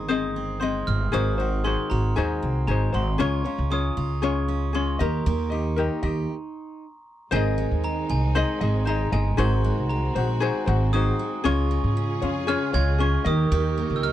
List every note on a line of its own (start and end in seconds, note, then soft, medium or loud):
0.00 0.84 G1 medium
0.00 1.13 D#3 medium
0.00 0.10 G#3 medium
0.00 0.36 C4 medium
0.00 1.14 G#4 medium
0.00 0.10 D#5 medium
0.08 0.62 G#3 medium
0.08 0.60 C4 medium
0.08 0.61 G#4 medium
0.08 0.59 C5 medium
0.08 0.62 D#5 medium
0.08 0.58 D#6 medium
0.36 0.87 C4 medium
0.60 1.65 G#3 medium
0.60 1.12 C4 medium
0.60 1.12 G#4 medium
0.60 1.11 C5 medium
0.60 1.13 D#5 medium
0.60 0.85 C6 medium
0.87 1.09 G1 medium
0.87 1.39 C4 medium
0.87 1.14 F6 medium
1.12 1.75 G#1 medium
1.12 3.20 D#3 medium
1.12 1.39 D#4 medium
1.12 1.38 F#4 medium
1.12 1.90 F#4 medium
1.12 1.38 G#4 medium
1.12 1.37 C5 medium
1.12 1.66 D#6 medium
1.38 2.41 C4 medium
1.38 1.64 D#4 soft
1.38 1.65 F#4 soft
1.38 1.64 C5 medium
1.64 2.16 G#3 medium
1.64 2.16 D#4 medium
1.64 2.16 F#4 medium
1.64 2.16 G#4 medium
1.64 2.17 C5 medium
1.64 1.89 C6 medium
1.90 2.12 G#1 medium
1.90 3.20 F#4 medium
1.90 2.17 A#5 medium
2.16 2.38 D#2 medium
2.16 2.68 G#3 medium
2.16 2.68 D#4 medium
2.16 2.68 F#4 loud
2.16 2.67 G#4 medium
2.16 2.69 C5 medium
2.16 2.69 G#5 medium
2.43 2.64 C2 medium
2.43 2.93 C4 medium
2.67 2.89 G#1 medium
2.67 3.18 G#3 medium
2.67 2.94 D#4 medium
2.67 2.93 F#4 medium
2.67 2.94 G#4 medium
2.67 2.91 C5 medium
2.67 2.92 A#5 medium
2.92 3.15 G#1 medium
2.92 3.25 C4 medium
2.92 3.18 D#4 soft
2.92 3.19 F#4 soft
2.92 3.19 C5 soft
2.92 3.18 C6 medium
3.18 3.41 C#2 medium
3.18 3.70 G#3 medium
3.18 3.45 C#4 medium
3.18 3.45 F4 medium
3.18 3.96 F4 medium
3.18 3.45 G#4 medium
3.18 3.43 C#5 loud
3.18 3.68 C#6 medium
3.44 4.47 C#4 medium
3.44 3.70 C#4 soft
3.44 3.71 F4 soft
3.44 3.71 C#5 medium
3.58 3.90 C#2 medium
3.70 4.22 G#3 medium
3.70 4.21 C#4 medium
3.70 4.22 F4 medium
3.70 4.21 G#4 medium
3.70 4.22 C#5 medium
3.70 4.25 D#6 medium
3.97 4.96 C#2 medium
3.97 5.05 F4 medium
4.22 4.73 G#3 medium
4.22 4.73 C#4 medium
4.22 4.73 F4 medium
4.22 4.72 G#4 medium
4.22 4.74 C#5 loud
4.22 4.76 C#6 medium
4.48 5.05 C#4 medium
4.73 5.00 G#3 medium
4.73 5.00 C#4 medium
4.73 5.00 F4 medium
4.73 4.99 G#4 medium
4.73 4.99 C#5 medium
4.73 5.01 C6 medium
4.99 5.21 D#2 loud
4.99 5.25 A#3 medium
4.99 5.52 D#4 medium
4.99 5.49 G4 medium
4.99 5.51 A#4 soft
4.99 5.50 D#5 medium
4.99 6.26 A#5 medium
5.26 5.87 D#2 loud
5.26 5.76 A#3 medium
5.26 6.02 G4 medium
5.50 6.84 D#4 medium
5.50 5.76 D#4 soft
5.50 5.76 G4 soft
5.50 5.77 D#5 medium
5.76 6.34 A#3 medium
5.76 6.03 D#4 medium
5.76 6.02 G4 medium
5.76 6.03 A#4 medium
5.76 6.01 D#5 medium
6.03 6.24 D#2 medium
6.03 6.30 D#4 soft
6.03 6.34 G4 medium
6.03 6.29 G4 soft
6.03 6.29 D#5 medium
7.31 7.64 G#1 medium
7.31 9.38 D#3 medium
7.31 11.41 G#3 medium
7.31 9.37 C4 medium
7.31 9.36 D#4 medium
7.31 8.35 D#4 medium
7.31 8.09 G#4 medium
7.31 8.36 G#4 medium
7.31 8.34 C5 medium
7.31 7.86 G#5 medium
7.35 8.36 D#5 loud
7.58 8.61 G#3 medium
7.71 8.03 D#2 medium
7.84 8.35 C4 medium
7.84 8.11 A#5 medium
8.09 8.41 C2 medium
8.09 9.38 G#4 medium
8.09 8.37 G#5 medium
8.35 8.87 C4 medium
8.35 8.61 D#4 medium
8.35 8.61 G#4 medium
8.35 8.61 C5 medium
8.35 8.59 D#5 loud
8.35 8.89 C6 medium
8.61 9.03 G#1 loud
8.61 9.12 G#3 medium
8.61 8.86 D#4 soft
8.61 8.87 G#4 medium
8.61 8.87 D#5 medium
8.85 9.90 C4 medium
8.85 9.13 D#4 medium
8.85 9.12 G#4 medium
8.85 9.12 C5 medium
8.85 9.11 D#5 medium
8.85 9.14 A#5 medium
9.12 9.34 G1 loud
9.12 9.64 G#3 medium
9.12 9.36 D#4 soft
9.12 9.36 G#4 soft
9.12 9.38 D#5 medium
9.12 9.39 G#5 medium
9.37 9.70 G#1 loud
9.37 11.45 D#3 medium
9.37 11.43 C4 medium
9.37 10.15 D#4 medium
9.37 11.43 F#4 medium
9.37 10.16 F#4 medium
9.37 10.15 F#4 medium
9.37 10.20 G#4 medium
9.37 10.14 C5 loud
9.37 9.92 C6 medium
9.64 10.67 G#3 medium
9.77 10.09 C2 medium
9.90 10.41 C4 medium
9.90 10.38 A#5 medium
10.15 10.48 A#1 medium
10.15 10.40 D#4 soft
10.15 11.45 F#4 medium
10.15 10.41 F#4 soft
10.15 10.41 C5 medium
10.40 10.92 C4 medium
10.40 10.67 D#4 medium
10.40 10.67 F#4 medium
10.40 10.67 G#4 medium
10.40 10.65 C5 medium
10.40 10.95 G#5 medium
10.66 11.10 G#1 loud
10.66 11.19 G#3 medium
10.66 10.93 D#4 soft
10.66 10.94 F#4 medium
10.66 10.93 C5 medium
10.93 11.50 C4 medium
10.93 11.44 D#4 medium
10.93 11.45 F#4 medium
10.93 11.42 G#4 medium
10.93 11.45 C5 medium
10.93 11.46 D#6 loud
11.19 11.44 G#3 medium
11.44 11.77 C#2 loud
11.44 13.23 C#3 medium
11.44 11.70 G#3 medium
11.44 12.22 C#4 medium
11.44 13.23 C#4 medium
11.44 13.24 F4 medium
11.44 12.22 F4 loud
11.44 12.21 F4 medium
11.44 12.22 G#4 loud
11.44 13.23 G#4 medium
11.44 12.20 C#5 loud
11.44 12.44 C#6 loud
11.71 12.73 G#3 medium
11.84 12.15 G#2 medium
11.97 12.47 C#4 medium
12.22 12.54 F2 medium
12.22 12.47 C#4 soft
12.22 13.31 F4 medium
12.22 12.47 F4 soft
12.22 12.48 C#5 medium
12.47 12.74 C#4 medium
12.47 12.99 C#4 medium
12.47 12.74 F4 medium
12.47 12.73 G#4 medium
12.47 12.72 C#5 medium
12.47 12.72 F6 loud
12.73 13.16 C#2 medium
12.73 13.31 G#3 medium
12.73 12.98 C#4 soft
12.73 12.99 F4 medium
12.73 12.99 C#5 medium
12.73 13.01 G#6 loud
12.98 13.25 C#4 medium
12.98 13.31 C#4 medium
12.98 13.26 F4 medium
12.98 13.25 G#4 medium
12.98 13.24 C#5 medium
12.98 13.27 C#6 loud
13.24 13.47 D#2 loud
13.24 14.12 D#3 medium
13.24 13.51 D#3 medium
13.24 14.12 D#4 medium
13.24 14.12 G4 medium
13.24 14.12 A#4 medium
13.24 14.12 D#5 medium
13.24 13.99 D#6 loud
13.29 14.12 G4 medium
13.51 13.83 D#2 loud
13.51 14.12 D#3 medium
13.51 14.12 G4 medium
13.77 14.12 A#3 medium
13.90 14.12 C#2 medium
13.96 14.03 E6 medium
14.03 14.12 D#4 medium
14.03 14.12 F6 loud